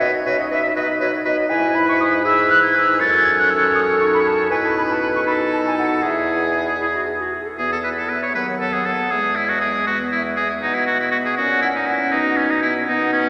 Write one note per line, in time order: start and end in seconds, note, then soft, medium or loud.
0.00 0.11 B2 medium
0.00 1.51 D#4 medium
0.00 0.12 F#4 medium
0.00 0.11 B4 medium
0.00 0.06 D#5 medium
0.26 0.37 B2 medium
0.26 0.37 F#4 medium
0.26 0.37 B4 medium
0.26 0.41 C#5 medium
0.39 0.50 D#5 medium
0.51 0.62 B2 medium
0.51 0.62 F#4 medium
0.51 0.63 B4 medium
0.51 0.75 E5 medium
0.76 0.87 B2 medium
0.76 0.87 F#4 medium
0.76 0.87 B4 medium
0.76 0.82 D#5 medium
1.00 1.12 B2 medium
1.00 1.12 F#4 medium
1.00 1.12 B4 medium
1.00 1.06 C#5 medium
1.25 1.37 B2 medium
1.25 1.36 F#4 medium
1.25 1.36 B4 medium
1.25 1.51 D#5 medium
1.49 2.96 G#2 medium
1.49 2.26 E4 medium
1.49 2.21 E4 medium
1.49 2.20 B4 medium
1.49 1.76 G#5 medium
1.75 1.87 B5 medium
1.89 1.94 C#6 medium
2.00 2.06 D#6 medium
2.24 2.63 E4 medium
2.24 2.73 G#4 medium
2.24 3.02 B4 medium
2.24 2.51 E6 medium
2.50 2.62 F#6 loud
2.62 2.99 D#4 medium
2.62 2.77 G#6 medium
2.75 3.02 E6 medium
2.99 4.52 F#2 medium
2.99 4.01 C#4 medium
2.99 4.52 A4 medium
2.99 4.50 C#5 medium
2.99 3.26 A6 medium
3.25 3.37 G#6 medium
3.38 3.52 F#6 medium
3.50 3.74 E6 medium
3.75 3.81 D#6 medium
4.00 4.50 D#4 medium
4.00 4.06 C#6 medium
4.14 4.19 B5 medium
4.26 4.50 A5 medium
4.50 6.05 B2 medium
4.50 5.28 E4 medium
4.50 5.25 B4 medium
4.50 4.56 G#5 medium
4.64 4.76 A5 medium
4.78 4.83 B5 medium
4.90 5.01 A5 medium
5.02 5.07 B5 medium
5.15 5.20 C#6 medium
5.26 6.03 D#4 medium
5.26 6.02 F#4 medium
5.26 6.05 A4 medium
5.26 5.33 B5 medium
5.53 5.59 A5 medium
5.67 5.77 G#5 medium
5.78 6.03 F#5 medium
6.03 7.33 E2 medium
6.03 6.75 E4 medium
6.03 7.18 G#4 medium
6.03 7.33 G#4 medium
6.03 6.80 E5 medium
6.81 6.87 E4 medium
6.94 7.08 F#4 medium
7.06 7.22 G#4 medium
7.21 7.35 F#4 medium
7.34 7.48 G#4 medium
7.46 7.58 A4 medium
7.58 8.26 E2 medium
7.58 8.37 B3 soft
7.58 7.84 B3 soft
7.58 7.70 G#4 medium
7.58 7.84 E5 soft
7.72 7.78 A4 medium
7.84 8.09 B3 soft
7.84 7.90 B4 medium
7.84 8.09 E5 soft
7.98 8.11 A4 soft
8.09 8.34 B3 soft
8.09 8.22 B4 soft
8.09 8.35 E5 soft
8.23 8.35 C#5 soft
8.35 9.02 D#2 soft
8.35 8.94 F#3 soft
8.35 8.59 B3 soft
8.35 8.46 B4 medium
8.35 8.60 F#5 soft
8.60 8.85 B3 soft
8.60 8.75 A4 medium
8.60 8.86 F#5 soft
8.73 8.87 G#4 medium
8.85 9.10 B3 soft
8.85 9.13 A4 medium
8.85 9.11 F#5 soft
9.11 9.78 E2 soft
9.11 9.89 G#3 soft
9.11 9.36 B3 soft
9.11 9.37 G#4 medium
9.11 9.36 E5 soft
9.36 9.61 B3 soft
9.36 9.51 E4 medium
9.36 9.61 E5 soft
9.49 9.60 F#4 soft
9.61 9.86 B3 soft
9.61 9.86 G#4 medium
9.61 9.87 E5 soft
9.87 10.54 E2 soft
9.87 10.12 B3 soft
9.87 11.38 B3 medium
9.87 9.98 F#4 medium
9.87 10.12 E5 soft
10.12 10.37 B3 soft
10.12 10.23 E4 medium
10.12 10.38 E5 soft
10.36 10.62 B3 soft
10.36 10.48 G#4 medium
10.36 10.63 E5 soft
10.62 11.29 B2 medium
10.62 10.87 B3 soft
10.62 10.76 D#4 medium
10.62 10.88 F#5 soft
10.74 10.86 E4 soft
10.86 11.12 B3 soft
10.86 10.99 F#4 medium
10.86 11.12 F#5 soft
11.00 11.11 E4 medium
11.11 11.37 B3 soft
11.11 11.17 F#4 medium
11.11 11.37 F#5 soft
11.25 11.37 G#4 medium
11.37 12.04 A#2 medium
11.37 11.62 C#4 soft
11.37 12.12 C#4 medium
11.37 11.61 F#4 medium
11.37 11.63 F#5 soft
11.62 11.88 C#4 soft
11.62 11.68 E4 medium
11.62 11.88 F#5 soft
11.75 11.88 D#4 medium
11.87 12.12 C#4 soft
11.87 12.14 E4 medium
11.87 12.13 F#5 soft
12.12 12.79 B2 medium
12.12 12.36 B3 medium
12.12 12.86 D#4 medium
12.12 12.38 D#4 medium
12.12 12.38 F#5 soft
12.36 12.62 B3 soft
12.36 12.52 C#4 medium
12.36 12.63 F#5 soft
12.50 12.62 D#4 medium
12.62 12.87 B3 soft
12.62 12.74 E4 medium
12.62 12.88 F#5 soft
12.87 13.29 B2 medium
12.87 13.12 B3 soft
12.87 13.29 B3 medium
12.87 13.12 D#4 medium
12.87 13.13 F#5 medium
13.12 13.29 B3 soft
13.12 13.29 C#4 medium
13.12 13.29 F#5 soft